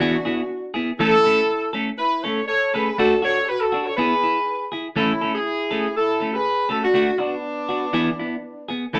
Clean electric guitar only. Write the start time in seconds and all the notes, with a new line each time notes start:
0.00 E3 B3 E4 G#4
0.25 B3 E4 G#4
0.74 B3 E4 G#4
0.99 E3 A3 C#4 A4
1.24 A3 C#4 A4
1.73 A3 C#4 A4
2.24 A3 C#4 A4
2.74 A3 C#4 A4
2.98 A3 D4 F#4
3.22 D4 F#4
3.72 D4 F#4
3.98 B3 E4 G#4
4.23 E4
4.72 E4 G#4
4.96 E3 A3 C#4 A4
5.21 A3 C#4 A4
5.71 A3 C#4 A4
6.20 A3 C#4 A4
6.69 A3 C#4 A4
6.94 A3 D4 F#4
7.18 D4 F#4
7.69 D4 F#4
7.93 E3 B3 E4 G#4
8.19 B3 E4
8.68 B3 G#4, muted clean electric guitar stroke
8.93 E3 A3 C#4 A4